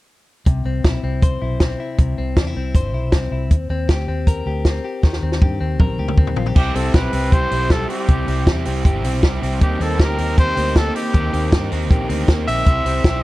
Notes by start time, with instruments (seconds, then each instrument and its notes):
0.46 fingered electric bass C2, clean electric guitar C3, kick, closed hi-hat
0.65 fingered electric bass C2, clean electric guitar C4
0.84 fingered electric bass B1, clean electric guitar E4, kick, snare, closed hi-hat
1.03 fingered electric bass C2, clean electric guitar C4
1.22 clean electric guitar C5, kick, closed hi-hat
1.42 fingered electric bass B1, clean electric guitar E4
1.60 clean electric guitar C4, kick, snare, closed hi-hat
1.80 clean electric guitar E4
1.98 fingered electric bass C2, clean electric guitar C3, kick, closed hi-hat
2.18 fingered electric bass C2, clean electric guitar C4
2.37 fingered electric bass E2, clean electric guitar D4, kick, snare, closed hi-hat
2.47 clean electric guitar E4
2.56 fingered electric bass C2, clean electric guitar C4
2.75 fingered electric bass G1, clean electric guitar C5, kick, closed hi-hat
2.94 fingered electric bass B1, clean electric guitar E4
3.12 fingered electric bass C2, clean electric guitar C4, kick, snare, closed hi-hat
3.31 fingered electric bass C2, clean electric guitar E4
3.51 fingered electric bass D#2, kick, closed hi-hat
3.70 fingered electric bass D#2, clean electric guitar C4
3.89 fingered electric bass D2, clean electric guitar G4, kick, snare, closed hi-hat
4.08 fingered electric bass D#2, clean electric guitar C4
4.27 clean electric guitar A#4, kick, closed hi-hat
4.46 fingered electric bass D2, clean electric guitar G4
4.65 clean electric guitar C4, kick, snare, closed hi-hat
4.85 clean electric guitar G4
5.03 fingered electric bass D#2, clean electric guitar D#3, kick, snare
5.13 snare
5.22 fingered electric bass D#2, clean electric guitar C4
5.32 snare
5.42 fingered electric bass G2, clean electric guitar G4, kick
5.61 fingered electric bass D#2, clean electric guitar C4
5.80 fingered electric bass A#1, clean electric guitar A#4, kick, mid tom
5.99 fingered electric bass D2, clean electric guitar G4
6.08 mid tom
6.17 fingered electric bass D#2, clean electric guitar C4, kick
6.27 floor tom
6.36 fingered electric bass A#1, clean electric guitar F4, floor tom
6.46 clean electric guitar G4, floor tom
6.55 fingered electric bass C2, overdriven electric guitar C3 G3 C4 E4 G4, trumpet G4, kick, crash
6.75 fingered electric bass C2, clean electric guitar C4, overdriven electric guitar C4 E4 G4, trumpet A4, open hi-hat
6.94 fingered electric bass B1, overdriven electric guitar G3 C4 E4 G4, clean electric guitar G4, trumpet B4, kick, snare, closed hi-hat
7.12 fingered electric bass C2, clean electric guitar C4, overdriven electric guitar C4 E4 G4, open hi-hat
7.32 overdriven electric guitar C3 G3 C4 E4 G4, clean electric guitar G4, trumpet C5, kick, closed hi-hat
7.51 fingered electric bass B1, clean electric guitar C4, overdriven electric guitar C4 E4 G4, open hi-hat
7.70 overdriven electric guitar G3 C4 E4 G4, clean electric guitar G3, trumpet A4, kick, snare, closed hi-hat
7.89 clean electric guitar C4, overdriven electric guitar C4 E4 G4, trumpet G4, open hi-hat
8.08 fingered electric bass C2, overdriven electric guitar C3 G3 C4 E4 G4, clean electric guitar C3, kick, closed hi-hat
8.28 fingered electric bass C2, clean electric guitar C4, overdriven electric guitar C4 E4 G4, open hi-hat
8.47 fingered electric bass E2, overdriven electric guitar G3 C4 E4 G4, clean electric guitar G4, kick, snare, closed hi-hat
8.65 fingered electric bass C2, clean electric guitar C4, overdriven electric guitar C4 E4 G4, open hi-hat
8.84 fingered electric bass G1, overdriven electric guitar C3 G3 C4 E4 G4, clean electric guitar G4, kick, closed hi-hat
9.03 fingered electric bass B1, clean electric guitar C4, overdriven electric guitar C4 E4 G4, open hi-hat
9.22 fingered electric bass C2, overdriven electric guitar G3 C4 E4 G4, clean electric guitar G3, kick, snare, closed hi-hat
9.42 fingered electric bass C2, clean electric guitar C4, overdriven electric guitar C4 E4 G4, open hi-hat
9.60 fingered electric bass D#2, overdriven electric guitar C3 D#3 A#3 D#4 G4 A#4, trumpet G4, kick, closed hi-hat
9.79 fingered electric bass D#2, overdriven electric guitar A#3 D#4 G4 A#4, clean electric guitar C4, trumpet A4, open hi-hat
9.98 fingered electric bass D2, overdriven electric guitar A#3 D#4 G4 A#4, clean electric guitar G4, trumpet A#4, kick, snare, closed hi-hat
10.18 fingered electric bass D#2, overdriven electric guitar A#3 D#4 G4 A#4, clean electric guitar C4, open hi-hat
10.37 overdriven electric guitar C3 D#3 A#3 D#4 G4 A#4, clean electric guitar G4, trumpet C5, kick, closed hi-hat
10.56 fingered electric bass D2, overdriven electric guitar A#3 D#4 G4 A#4, clean electric guitar C4, open hi-hat
10.75 overdriven electric guitar A#3 D#4 G4 A#4, clean electric guitar A#3, trumpet A4, kick, snare, closed hi-hat
10.94 overdriven electric guitar A#3 D#4 G4 A#4, clean electric guitar C4, trumpet G4, open hi-hat
11.14 fingered electric bass D#2, overdriven electric guitar C3 D#3 A#3 D#4 G4 A#4, clean electric guitar D#3, kick, closed hi-hat
11.32 fingered electric bass D#2, overdriven electric guitar A#3 D#4 G4 A#4, clean electric guitar C4, open hi-hat
11.52 fingered electric bass G2, overdriven electric guitar A#3 D#4 G4 A#4, clean electric guitar G4, kick, snare, closed hi-hat
11.71 fingered electric bass D#2, overdriven electric guitar A#3 D#4 G4 A#4, clean electric guitar C4, open hi-hat
11.90 fingered electric bass A#1, overdriven electric guitar C3 D#3 A#3 D#4 G4 A#4, clean electric guitar G4, kick, closed hi-hat
12.09 fingered electric bass D2, overdriven electric guitar A#3 D#4 G4 A#4, clean electric guitar C4, open hi-hat
12.28 fingered electric bass D#2, overdriven electric guitar A#3 D#4 G4 A#4, clean electric guitar A#3, kick, snare, closed hi-hat
12.47 fingered electric bass A#1, overdriven electric guitar A#3 D#4 G4 A#4, clean electric guitar C4, trumpet E5, open hi-hat
12.66 fingered electric bass C2, overdriven electric guitar C3 C4 E4 G4 C5, kick, closed hi-hat
12.85 fingered electric bass C2, clean electric guitar C4, overdriven electric guitar E4 G4 C5, open hi-hat
13.04 fingered electric bass B1, overdriven electric guitar C4 E4 G4 C5, clean electric guitar G4, kick, snare, closed hi-hat